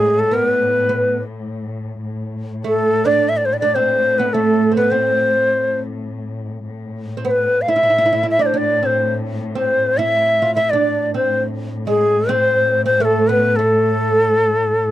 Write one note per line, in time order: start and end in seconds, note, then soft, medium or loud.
0.00 2.03 A2 medium
0.00 0.31 G#3 medium
0.00 0.21 G#4 medium
0.19 0.36 A4 medium
0.31 0.88 B3 medium
0.31 0.49 A#4 medium
0.49 1.20 B4 medium
0.89 1.16 B3 medium
2.04 6.67 A2 medium
2.64 3.08 A3 medium
2.64 3.07 A4 medium
3.05 3.26 D4 medium
3.05 3.30 D5 loud
3.29 3.39 E5 medium
3.37 3.47 D5 medium
3.45 3.55 C5 medium
3.53 3.59 D5 medium
3.59 3.75 D4 medium
3.59 3.76 D5 medium
3.75 4.22 C4 medium
3.75 4.20 C5 medium
4.18 4.34 B3 medium
4.18 4.35 B4 medium
4.33 4.76 A3 medium
4.33 4.76 A4 medium
4.72 4.78 C4 medium
4.76 4.93 B3 medium
4.76 4.92 B4 medium
4.91 5.76 C4 medium
4.91 5.79 C5 medium
6.68 11.29 A2 medium
7.17 7.25 C4 medium
7.25 7.69 B3 medium
7.25 7.32 C5 medium
7.31 7.63 B4 medium
7.62 7.71 F5 medium
7.68 7.75 E4 medium
7.68 8.26 E5 medium
7.76 7.82 E4 medium
7.83 7.89 E4 medium
7.90 7.97 E4 medium
7.98 8.04 E4 medium
8.06 8.11 E4 medium
8.13 8.21 E4 medium
8.23 8.38 E4 medium
8.30 8.44 E5 medium
8.39 8.53 D4 medium
8.39 8.48 D5 medium
8.46 8.59 C5 medium
8.54 8.82 D4 medium
8.54 8.87 D5 medium
8.83 9.10 C4 medium
8.83 9.14 C5 medium
9.55 9.98 C4 medium
9.55 9.99 C5 medium
9.98 10.42 E4 medium
9.98 10.54 E5 loud
10.42 10.56 F4 medium
10.55 10.72 E4 medium
10.55 10.72 E5 medium
10.70 11.14 D4 medium
10.70 11.14 D5 medium
11.14 11.41 C4 medium
11.14 11.42 C5 medium
11.30 14.91 A2 medium
11.87 12.31 G#3 medium
11.87 12.31 G#4 medium
12.29 12.84 C4 medium
12.29 12.85 C5 medium
12.85 13.01 C4 medium
12.85 13.03 C5 loud
13.00 13.28 A3 medium
13.00 13.06 A#4 medium
13.05 13.29 A4 medium
13.28 13.58 B3 medium
13.28 13.58 B4 medium
13.56 14.91 A3 medium
13.56 14.91 A4 medium